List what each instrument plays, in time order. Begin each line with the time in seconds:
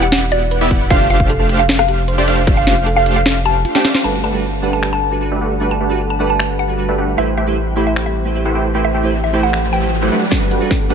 Already playing: sub bass E1, supersaw synth B3 E4 G4 D5 F#5, digital synth lead F#5
0.02 synth arpeggio sound G4, synth pluck F#5
0.12 synth arpeggio sound G4, snare, closed hi-hat
0.32 synth arpeggio sound F#4, synth pluck D5, closed hi-hat
0.51 synth arpeggio sound B4, closed hi-hat
0.61 supersaw synth B3 E4 G4 D5 E5, synth arpeggio sound B4, digital synth lead E5
0.71 supersaw synth B3 E4, digital synth lead F#5, kick, closed hi-hat
0.81 synth arpeggio sound B4
0.90 sub bass F1, supersaw synth A3 D4 G4 C5 F5, synth arpeggio sound F4, digital synth lead F5, synth pluck F5, kick, closed hi-hat
1.10 supersaw synth A3 D4 G4 C5 F5, synth arpeggio sound F4, digital synth lead F5, synth pluck F5, closed hi-hat
1.20 kick
1.30 synth arpeggio sound A4, closed hi-hat
1.40 synth arpeggio sound A4
1.49 supersaw synth A3 D4 G4 C5 F5, digital synth lead F5, closed hi-hat
1.59 synth arpeggio sound A4, synth pluck F5
1.69 synth arpeggio sound A4, snare, closed hi-hat
1.79 synth pluck F5, cross-stick
1.89 synth arpeggio sound G4, closed hi-hat
2.08 synth arpeggio sound C5, closed hi-hat
2.18 supersaw synth A3 D4 G4 C5 D5, synth arpeggio sound C5, digital synth lead D5
2.28 supersaw synth A3 D4 G4 C5 F5, digital synth lead F5, closed hi-hat
2.38 synth arpeggio sound C5
2.47 supersaw synth A3 D4 G4 C5 F5, synth arpeggio sound F4, digital synth lead F5, kick, closed hi-hat
2.57 synth pluck F5
2.67 supersaw synth A3 D4 G4 C5 F5, synth arpeggio sound F4, digital synth lead F5, snare, closed hi-hat
2.86 synth arpeggio sound A4, closed hi-hat
2.96 synth arpeggio sound A4, synth pluck F5
3.06 supersaw synth A3 D4 G4 C5 F5, digital synth lead F5, closed hi-hat
3.16 synth arpeggio sound A4, synth pluck F5
3.26 synth arpeggio sound A4, snare, closed hi-hat
3.45 synth arpeggio sound G4, synth pluck A5, closed hi-hat
3.65 synth arpeggio sound F4, closed hi-hat
3.75 supersaw synth A3 D4 G4 C5 G5, synth arpeggio sound F5, digital synth lead G5, snare
3.84 supersaw synth A3 D4 G4 C5 F5, digital synth lead F5, snare, closed hi-hat
3.94 synth arpeggio sound C5, snare
4.03 sub bass G1, synth keys G3 D4 F#4 A4 B4, ambient pad G3 A4 B4 F#5, supersaw synth A3 D4 G4 B4 F#5, synth pluck A5
4.24 supersaw synth A3 D4 G4 B4 F#5, synth pluck A5
4.33 synth keys G3 D4 F#4 A4 B4
4.62 synth keys G3 D4 A4 B4 F#5, supersaw synth A3 D4 G4 B4 F#5
4.73 synth pluck A5
4.83 finger snap
4.93 synth pluck A5
5.11 synth keys G3 D4 F#4 A4 B4
5.21 synth keys G3 D4 F#4 A4 B4
5.32 supersaw synth A3 D4 G4 B4 E5
5.41 supersaw synth A3 D4 G4 B4 F#5
5.60 synth keys G3 D4 F#4 A4 B4, supersaw synth A3 D4 G4 B4 F#5
5.71 synth pluck A5
5.81 supersaw synth A3 D4 G4 B4 F#5
5.89 synth keys G3 D4 F#4 A4 B4
6.10 synth pluck A5
6.19 synth keys G3 D4 A4 B4 F#5, supersaw synth A3 D4 G4 B4 F#5
6.30 synth pluck A5
6.40 finger snap
6.59 synth pluck F#5
6.68 synth keys G3 D4 F#4 A4 B4
6.78 synth keys G3 D4 F#4 A4 B4
6.89 supersaw synth A3 D4 G4 B4 E5
6.98 supersaw synth A3 D4 G4 B4 F#5
7.17 sub bass A1, synth keys A3 E4 G4 B4 C5, ambient pad A3 C4 G4, supersaw synth A3 E4 G4 C5 G5, synth pluck E5, riser
7.37 supersaw synth A3 E4 G4 C5 G5, synth pluck E5
7.46 synth keys A3 E4 G4 B4 C5
7.76 synth keys A3 E4 G4 C5 B5, supersaw synth A3 E4 G4 C5 G5
7.87 synth pluck E5
7.96 finger snap
8.06 synth pluck E5
8.25 synth keys A3 E4 G4 B4 C5
8.34 synth keys A3 E4 G4 B4 C5
8.45 supersaw synth A3 E4 G4 C5 F#5
8.55 supersaw synth A3 E4 G4 C5 G5
8.74 synth keys A3 E4 G4 B4 C5, supersaw synth A3 E4 G4 C5 G5
8.85 synth pluck E5
8.94 supersaw synth A3 E4 G4 C5 G5
9.03 synth keys A3 E4 G4 B4 C5
9.24 synth pluck E5
9.32 synth keys A3 E4 G4 C5 B5, supersaw synth A3 E4 G4 C5 G5
9.43 synth pluck F#5
9.53 finger snap
9.72 synth keys A3 E4 G4 B4 C5, synth pluck G5
9.81 synth keys A3 E4 G4 B4 C5
10.01 synth keys A3 E4 G4 B4 C5, supersaw synth A3 E4 G4 C5 F#5
10.12 supersaw synth A3 D4 G4 B4 F#5
10.30 ambient pad G2 A4 B4, synth keys G3 D4 F#4 A4 B4, supersaw synth A3 D4 G4 F#5, synth arpeggio sound F#4, kick, snare, closed hi-hat, riser
10.51 supersaw synth A3 D4 G4 B4 F#5, synth arpeggio sound F#4, closed hi-hat
10.60 synth keys G3 D4 F#4 A4 B4
10.71 synth arpeggio sound A4, kick, snare, closed hi-hat
10.81 synth arpeggio sound A4
10.89 synth keys G3 D4 A4 F#5, supersaw synth A3 D4 G4 B4 F#5, closed hi-hat